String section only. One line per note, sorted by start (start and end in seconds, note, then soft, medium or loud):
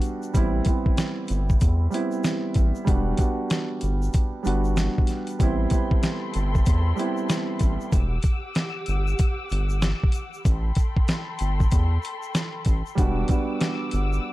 5.40 7.90 A4 medium
5.40 7.90 G5 medium
5.40 7.90 B5 medium
5.40 7.90 C6 loud
7.93 10.43 G4 medium
7.93 10.43 F#5 medium
7.93 10.43 D6 medium
7.93 10.43 E6 medium
10.46 12.96 A4 medium
10.46 12.96 G5 medium
10.46 12.96 B5 medium
10.46 12.96 C6 medium
12.98 14.33 G3 medium
12.98 14.33 F#5 medium
12.98 14.33 D6 medium
12.98 14.33 E6 medium